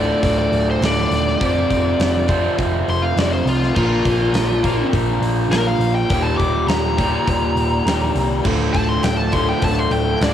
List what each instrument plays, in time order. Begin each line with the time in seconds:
Already playing: picked electric bass D1, overdriven electric guitar D2 A2 D3 A3 F4, lead electric guitar D5
0.23 picked electric bass D1, lead electric guitar D5, kick, open hi-hat
0.39 lead electric guitar D5
0.52 picked electric bass D1, open hi-hat
0.71 lead electric guitar C5
0.81 picked electric bass D1, overdriven electric guitar D2 A2 D3 A3 F4, snare, open hi-hat
0.85 lead electric guitar D5
1.11 picked electric bass D#1, snare, open hi-hat
1.28 snare
1.40 picked electric bass F1, overdriven electric guitar F2 C3 F3 G#3 C4 F4, kick, open hi-hat
1.70 picked electric bass F1, kick, open hi-hat
1.99 picked electric bass F1, snare, open hi-hat
2.28 overdriven electric guitar F3 G#3 C4 F4, kick, open hi-hat
2.32 overdriven electric guitar F2 C3
2.58 picked electric bass F1, kick, open hi-hat
2.88 picked electric bass F1, lead electric guitar C6, open hi-hat
3.02 lead electric guitar F5
3.16 picked electric bass F1, overdriven electric guitar F2 C3 F3 G#3 C4 F4, lead electric guitar D5, snare, open hi-hat
3.33 lead electric guitar C5
3.45 picked electric bass C2, lead electric guitar F4, open hi-hat
3.63 snare
3.74 picked electric bass A#1, overdriven electric guitar A#2 F3 A#3 C#4 F4 A#4, lead electric guitar F4, kick, crash
4.05 picked electric bass A#1, kick, open hi-hat
4.33 picked electric bass A#1, snare, open hi-hat
4.64 overdriven electric guitar A#2 F3 A#3 C#4 F4 A#4, kick, open hi-hat
4.93 picked electric bass A#1, kick, open hi-hat
5.21 picked electric bass A#1, open hi-hat
5.49 picked electric bass A#1, overdriven electric guitar A#2 F3 A#3 C#4 F4, lead electric guitar A#4, open hi-hat
5.53 overdriven electric guitar A#4, snare
5.67 lead electric guitar F5
5.79 picked electric bass A#1, open hi-hat
5.95 lead electric guitar G5
6.09 picked electric bass D#1, overdriven electric guitar D#2 A#2 D#3 G3 G4, kick, open hi-hat
6.23 lead electric guitar A5
6.37 picked electric bass D#1, lead electric guitar D6, kick, open hi-hat
6.67 picked electric bass D#1, lead electric guitar A#5, snare, open hi-hat
6.97 overdriven electric guitar D#2 A#2 D#3 G3 G4, kick, open hi-hat
7.27 picked electric bass D#1, kick, open hi-hat
7.55 picked electric bass D#1, open hi-hat
7.85 picked electric bass D#1, overdriven electric guitar D#2 A#2 D#3 G3 G4, snare, open hi-hat
8.15 picked electric bass C2, open hi-hat
8.42 picked electric bass D1, overdriven electric guitar D2 A2 D3, string machine D3 F3 A3 F4 A4, kick, crash
8.47 overdriven electric guitar A3 F4
8.73 picked electric bass D1, lead electric guitar A5, kick, open hi-hat
8.89 lead electric guitar C6
9.03 picked electric bass D1, lead electric guitar G5, snare, open hi-hat
9.17 lead electric guitar A5
9.32 overdriven electric guitar D2 A2 D3 A3 F4, lead electric guitar C6, kick, open hi-hat
9.49 lead electric guitar G5
9.62 picked electric bass D1, lead electric guitar A5, kick, open hi-hat
9.79 lead electric guitar C6
9.91 picked electric bass D1, lead electric guitar G5, open hi-hat
10.20 picked electric bass D1, overdriven electric guitar D2 A2 D3 A3 F4, lead electric guitar D5, snare, open hi-hat